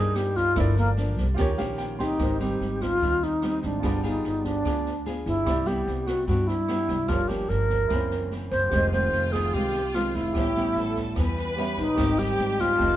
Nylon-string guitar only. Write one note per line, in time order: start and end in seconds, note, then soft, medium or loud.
0.00 0.55 G2 medium
0.00 0.53 G3 medium
0.00 0.54 A#3 medium
0.00 0.54 D#4 medium
0.56 1.36 G2 medium
0.56 0.94 F3 medium
0.56 0.94 A#3 medium
0.56 0.94 D4 medium
0.97 1.25 F3 medium
0.97 1.25 A#3 medium
0.97 1.25 D4 medium
1.38 2.18 D#3 medium
1.38 1.50 A#3 medium
1.38 1.50 C#4 medium
1.38 1.50 G4 medium
1.58 1.96 A#3 medium
1.58 1.96 C#4 medium
1.58 1.96 G4 medium
1.99 2.39 C4 medium
1.99 2.40 D#4 medium
1.99 2.58 G4 medium
2.20 2.99 G#2 medium
2.40 2.98 G3 medium
2.40 2.98 C4 medium
2.40 2.98 D#4 medium
3.02 3.81 D#3 soft
3.02 3.39 G3 soft
3.02 3.39 C4 soft
3.02 3.40 D#4 soft
3.43 3.82 G3 soft
3.43 3.82 C4 medium
3.43 3.82 D#4 medium
3.84 4.63 G3 medium
3.84 4.00 B3 soft
3.84 4.01 F4 medium
3.84 4.01 G#4 medium
4.03 4.61 B3 medium
4.03 4.61 F4 medium
4.03 4.62 G#4 medium
4.66 5.45 D3 soft
4.66 4.91 B3 soft
4.66 4.91 F4 soft
4.66 4.92 G#4 medium
5.06 5.45 B3 soft
5.06 5.45 F4 soft
5.06 5.45 G#4 medium
5.46 6.25 C3 soft
5.46 5.58 G3 medium
5.46 5.58 B3 soft
5.46 5.59 E4 medium
5.66 6.24 G3 medium
5.66 6.24 B3 medium
5.66 6.25 E4 medium
6.28 7.07 G2 medium
6.28 6.54 G3 medium
6.28 6.54 B3 medium
6.28 6.54 E4 medium
6.69 6.96 G3 medium
6.69 6.96 B3 medium
6.69 6.97 E4 medium
7.08 7.88 G2 soft
7.08 7.21 F3 medium
7.08 7.21 A#3 medium
7.08 7.21 C#4 medium
7.29 7.87 F3 medium
7.29 7.87 A#3 medium
7.29 7.87 C#4 medium
7.90 8.70 F#2 soft
7.90 8.28 E3 soft
7.90 8.28 A#3 soft
7.90 8.28 C4 soft
8.31 8.70 E3 soft
8.31 8.71 A#3 medium
8.31 8.71 C4 soft
8.72 9.52 F2 soft
8.72 8.89 D#3 soft
8.72 8.89 G#3 soft
8.72 8.90 C4 medium
8.92 9.50 D#3 medium
8.92 9.50 G#3 medium
8.92 9.51 C4 medium
9.54 10.33 C3 soft
9.54 9.80 D#3 medium
9.54 9.80 G#3 soft
9.54 9.80 C4 soft
9.95 10.34 D#3 soft
9.95 10.34 G#3 soft
9.95 10.34 C4 medium
10.36 11.15 A2 medium
10.36 10.47 G3 soft
10.36 10.48 B3 medium
10.36 10.48 C#4 medium
10.56 11.14 G3 medium
10.56 11.14 B3 medium
10.56 11.14 C#4 medium
11.17 11.96 E3 soft
11.17 11.54 G3 medium
11.17 11.54 B3 medium
11.17 11.55 C#4 medium
11.58 11.85 G3 soft
11.58 11.85 B3 medium
11.58 11.85 C#4 medium
11.98 12.77 G#2 soft
11.98 12.15 G3 soft
11.98 12.15 C4 medium
11.98 12.15 D#4 medium
12.18 12.76 G3 medium
12.18 12.76 C4 medium
12.18 12.76 D#4 medium
12.79 12.96 F2 soft
12.79 12.96 D#3 soft
12.79 12.96 A3 soft
12.79 12.96 C4 medium